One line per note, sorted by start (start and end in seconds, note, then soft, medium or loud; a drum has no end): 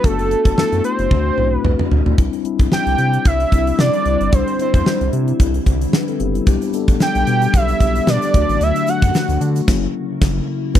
0.04 0.35 F#1 loud
0.04 0.44 A3 medium
0.04 0.44 B3 medium
0.04 0.44 D4 medium
0.04 0.44 F#4 medium
0.04 0.57 A4 loud
0.04 kick loud
0.04 closed hi-hat medium
0.19 closed hi-hat soft
0.31 closed hi-hat medium
0.45 0.54 F#1 medium
0.45 kick medium
0.45 closed hi-hat soft
0.57 0.63 F#2 soft
0.57 1.10 A3 medium
0.57 1.11 B3 medium
0.57 1.10 D4 medium
0.57 1.11 E4 medium
0.57 0.83 A4 medium
0.57 snare loud
0.72 0.81 F#2 medium
0.72 closed hi-hat soft
0.84 1.53 C5 loud
0.84 closed hi-hat medium
0.99 1.08 F#1 medium
0.99 closed hi-hat soft
1.11 1.31 D2 loud
1.11 1.33 A3 medium
1.11 1.33 C4 medium
1.11 1.33 D4 medium
1.11 1.34 F#4 medium
1.11 kick medium
1.11 high tom medium
1.37 1.58 B1 medium
1.37 1.96 A3 medium
1.37 1.96 C4 medium
1.37 1.97 D4 medium
1.37 1.97 E4 medium
1.37 mid tom medium
1.53 1.88 B4 loud
1.64 1.75 C2 medium
1.64 mid tom medium
1.79 mid tom medium
1.91 2.02 D2 medium
1.91 floor tom medium
2.06 2.15 D2 medium
2.06 floor tom medium
2.18 2.29 C2 loud
2.18 6.43 D3 medium
2.18 2.38 G3 medium
2.18 6.43 G3 medium
2.18 6.43 C4 medium
2.18 2.39 C4 medium
2.18 2.39 D4 medium
2.18 6.43 E4 medium
2.18 2.39 E4 medium
2.18 kick loud
2.18 closed hi-hat medium
2.33 closed hi-hat soft
2.44 3.23 G3 medium
2.44 3.23 C4 medium
2.44 3.23 D4 medium
2.44 3.23 E4 medium
2.44 closed hi-hat medium
2.59 2.69 B1 medium
2.59 kick medium
2.59 closed hi-hat soft
2.72 3.28 G5 loud
2.72 snare loud
2.86 2.96 C2 medium
2.86 closed hi-hat soft
2.98 3.19 C3 loud
2.98 closed hi-hat medium
3.13 closed hi-hat soft
3.25 3.46 C2 loud
3.25 3.80 E5 loud
3.25 kick medium
3.25 closed hi-hat medium
3.40 closed hi-hat soft
3.52 3.72 C2 medium
3.52 4.11 G3 medium
3.52 4.11 C4 medium
3.52 4.11 D4 medium
3.52 4.12 E4 medium
3.52 kick medium
3.52 closed hi-hat medium
3.67 closed hi-hat soft
3.79 3.90 C3 medium
3.79 4.36 D5 loud
3.79 snare loud
3.93 closed hi-hat soft
4.06 4.17 C2 medium
4.06 closed hi-hat medium
4.21 4.30 G1 medium
4.21 closed hi-hat soft
4.32 4.44 C2 loud
4.32 4.53 G3 medium
4.32 4.53 C4 medium
4.32 4.53 D4 medium
4.32 4.53 E4 medium
4.32 4.60 C5 medium
4.32 kick loud
4.32 closed hi-hat medium
4.48 closed hi-hat soft
4.59 5.37 G3 medium
4.59 5.38 C4 medium
4.59 5.38 D4 medium
4.59 5.38 E4 medium
4.59 5.10 C5 medium
4.59 closed hi-hat medium
4.74 4.83 E2 medium
4.74 kick medium
4.74 closed hi-hat soft
4.86 snare loud
5.01 5.10 C2 medium
5.01 closed hi-hat soft
5.13 5.33 C3 loud
5.13 closed hi-hat medium
5.28 closed hi-hat soft
5.40 5.60 C2 medium
5.40 kick medium
5.40 closed hi-hat medium
5.54 closed hi-hat soft
5.66 5.87 C2 medium
5.66 kick medium
5.66 closed hi-hat medium
5.81 closed hi-hat medium
5.93 6.08 D4 medium
5.93 6.07 B4 medium
5.93 snare loud
6.08 6.20 C4 medium
6.08 6.20 A4 medium
6.08 closed hi-hat soft
6.20 6.40 F#1 medium
6.20 6.35 B3 medium
6.20 6.34 G4 medium
6.20 closed hi-hat medium
6.35 6.46 G3 soft
6.35 6.60 E4 medium
6.35 closed hi-hat soft
6.47 6.58 B1 loud
6.47 9.65 D3 medium
6.47 6.67 G3 medium
6.47 8.33 G3 medium
6.47 6.67 B3 medium
6.47 8.33 B3 medium
6.47 6.67 D4 medium
6.47 8.33 G4 medium
6.47 6.68 G4 medium
6.47 kick loud
6.47 closed hi-hat medium
6.47 shaker medium
6.62 closed hi-hat soft
6.62 shaker soft
6.73 7.52 G3 medium
6.73 7.52 B3 medium
6.73 7.52 D4 medium
6.73 7.52 A4 medium
6.73 closed hi-hat medium
6.73 shaker medium
6.88 6.97 A1 medium
6.88 kick medium
6.88 closed hi-hat soft
6.88 shaker medium
7.00 7.57 G5 loud
7.00 snare loud
7.00 shaker medium
7.15 7.24 B1 medium
7.15 closed hi-hat soft
7.15 shaker soft
7.27 7.47 B2 loud
7.27 closed hi-hat medium
7.27 shaker medium
7.42 closed hi-hat soft
7.42 shaker medium
7.54 7.74 B1 loud
7.54 8.11 E5 loud
7.54 kick medium
7.54 closed hi-hat medium
7.54 shaker medium
7.68 closed hi-hat soft
7.68 shaker soft
7.80 8.01 B1 loud
7.80 8.34 G3 medium
7.80 8.34 B3 medium
7.80 8.34 D4 medium
7.80 8.35 G4 medium
7.80 kick medium
7.80 closed hi-hat medium
7.80 shaker medium
7.95 closed hi-hat soft
7.95 shaker soft
8.07 8.19 B2 medium
8.07 8.64 D5 medium
8.07 snare loud
8.07 shaker medium
8.22 closed hi-hat soft
8.22 shaker soft
8.34 8.45 D2 medium
8.34 8.78 F#3 medium
8.34 10.73 F#3 medium
8.34 8.78 A3 medium
8.34 9.67 A3 medium
8.34 8.79 D4 medium
8.34 9.67 F#4 medium
8.34 8.79 F#4 medium
8.34 kick loud
8.34 closed hi-hat medium
8.34 shaker soft
8.49 8.58 A1 medium
8.49 closed hi-hat soft
8.49 shaker soft
8.61 8.72 D2 loud
8.61 8.91 E5 loud
8.61 closed hi-hat medium
8.61 shaker medium
8.76 closed hi-hat soft
8.76 shaker soft
8.87 9.66 F#3 medium
8.87 9.66 A3 medium
8.87 9.66 D4 medium
8.87 9.66 F#4 medium
8.87 9.42 F#5 medium
8.87 closed hi-hat medium
8.87 shaker medium
9.02 9.11 F#2 medium
9.02 kick medium
9.02 closed hi-hat medium
9.02 shaker medium
9.15 snare loud
9.15 shaker medium
9.29 9.38 D2 loud
9.29 closed hi-hat soft
9.29 shaker soft
9.41 9.61 D3 loud
9.41 closed hi-hat medium
9.41 shaker medium
9.56 closed hi-hat soft
9.56 shaker medium
9.68 9.87 F#1 loud
9.68 10.74 C#3 medium
9.68 9.87 F#3 medium
9.68 9.87 A#3 medium
9.68 10.75 A#3 medium
9.68 9.87 C#4 medium
9.68 10.74 E4 medium
9.68 9.87 E4 medium
9.68 kick loud
9.68 snare loud
9.68 crash medium
10.21 10.40 F#1 loud
10.21 kick loud
10.21 snare loud
10.21 crash medium
10.74 10.79 B1 loud
10.74 10.79 F#3 medium
10.74 10.79 B3 medium
10.74 10.79 D#4 medium
10.74 10.79 F#4 medium
10.74 10.79 B4 loud
10.74 kick loud
10.74 crash medium
10.74 shaker medium